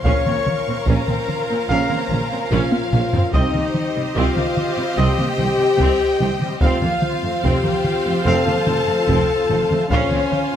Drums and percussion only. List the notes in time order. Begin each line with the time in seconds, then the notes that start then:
0.05 taiko
0.26 taiko mid
0.46 taiko mid
0.87 taiko
1.08 taiko mid
1.28 taiko mid
1.90 taiko mid
2.11 taiko mid
2.52 taiko low-mid
2.72 taiko high
2.93 taiko low-mid
3.13 taiko low
3.33 taiko
3.54 taiko mid
3.75 taiko mid
4.16 taiko
4.37 taiko mid
4.57 taiko mid
5.19 taiko mid
5.39 taiko mid
5.80 taiko
6.20 taiko mid
6.42 taiko mid
6.61 taiko
6.82 taiko mid
7.02 taiko mid
7.43 taiko
7.64 taiko mid
7.84 taiko mid
8.47 taiko mid
8.67 taiko mid
9.09 taiko
9.50 taiko mid
9.71 taiko mid
9.90 taiko
10.11 taiko mid
10.32 taiko mid